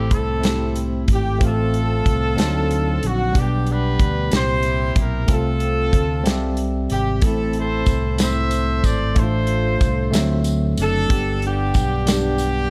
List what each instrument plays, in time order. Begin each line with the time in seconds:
Already playing: fingered electric bass A1, tine electric piano A2 A3 C4 E4 A4, horn section G4
0.11 fingered electric bass C2, horn section C4 E4 A4, kick, closed hi-hat
0.41 tine electric piano A3 C4 E4 G4, closed hi-hat
0.45 snare
0.76 closed hi-hat
1.08 fingered electric bass G#1, kick, closed hi-hat
1.13 horn section G4
1.38 fingered electric bass A1, tine electric piano A2 A3 C4 F4 G4, kick, closed hi-hat
1.44 horn section C4 F4 A4
1.49 tine electric piano A4
1.74 closed hi-hat
2.06 fingered electric bass C2, kick, closed hi-hat
2.35 fingered electric bass D2, tine electric piano D3 F#3 C4 D4 D#4, closed hi-hat
2.40 snare
2.71 closed hi-hat
3.03 fingered electric bass A#1, horn section F#4, closed hi-hat
3.32 fingered electric bass B1, tine electric piano B2 G3 A#3 D4 G4, kick, closed hi-hat
3.38 horn section B3 D4 G4, tine electric piano B3
3.66 horn section G4, closed hi-hat
3.70 horn section D4 B4
3.99 fingered electric bass D2, kick, closed hi-hat
4.30 fingered electric bass C2, tine electric piano A#2 A#3 C4 D4 G4, snare, closed hi-hat
4.34 horn section E4 G4 C5
4.39 tine electric piano E4
4.63 closed hi-hat
4.96 fingered electric bass B1, kick, closed hi-hat
5.00 horn section A#4
5.27 fingered electric bass C2, tine electric piano C3 A3 C4 F4 A4, kick, closed hi-hat
5.32 horn section C4 F4 A4
5.60 closed hi-hat
5.92 fingered electric bass D2, kick, closed hi-hat
6.24 fingered electric bass C2, tine electric piano C3 G3 C4 G4 E5, snare, closed hi-hat
6.57 closed hi-hat
6.90 fingered electric bass G#1, horn section G4, closed hi-hat
7.21 fingered electric bass A1, tine electric piano A2 A3 B3 E4 A4, horn section A4, kick, closed hi-hat
7.25 horn section C4 E4, tine electric piano C4
7.53 horn section C5, closed hi-hat
7.58 horn section E4 A4
7.86 fingered electric bass C2, kick, closed hi-hat, tambourine
8.18 tine electric piano A3 C4 E4 C5, horn section E5, snare, closed hi-hat, tambourine
8.23 horn section A4 C5
8.51 closed hi-hat, tambourine
8.84 fingered electric bass G#1, horn section D5, kick, closed hi-hat, tambourine
9.15 fingered electric bass A1, tine electric piano A2 A3 D4 E4 A4, horn section F4 A4 C5, kick, closed hi-hat
9.23 tine electric piano F4
9.47 closed hi-hat
9.81 fingered electric bass C2, kick, closed hi-hat, tambourine
10.11 fingered electric bass D2, tine electric piano D3 F#3 A3 C4 E5, closed hi-hat, tambourine
10.15 snare
10.44 closed hi-hat, tambourine
10.77 fingered electric bass F#1, horn section D4, closed hi-hat, tambourine
10.82 horn section A4
11.09 tine electric piano G2 G3 B3 D4 G4, kick, closed hi-hat
11.42 horn section B3 D4 G4, closed hi-hat
11.74 fingered electric bass B1, kick, closed hi-hat, tambourine
12.06 tine electric piano G3 B3 D4 G4, snare, closed hi-hat, tambourine
12.10 horn section B3 D4 G4
12.38 closed hi-hat, tambourine